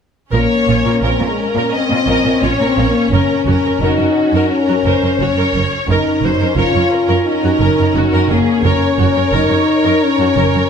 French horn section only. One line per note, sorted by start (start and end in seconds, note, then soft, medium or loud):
0.32 0.99 A#3 soft
1.03 1.26 C4 soft
1.26 1.49 G#3 soft
1.48 1.72 A#3 soft
1.73 2.42 C4 soft
2.44 2.66 C#4 soft
2.67 2.89 C4 soft
2.88 3.12 A#3 soft
3.10 3.79 C#4 soft
3.80 4.50 D#4 soft
4.48 5.53 C#4 soft
5.87 6.53 D#4 soft
6.56 7.24 F4 soft
7.25 8.27 D#4 soft
8.29 8.64 A#3 soft
8.64 9.33 C#4 soft
9.34 10.02 D#4 soft
10.03 10.70 C#4 soft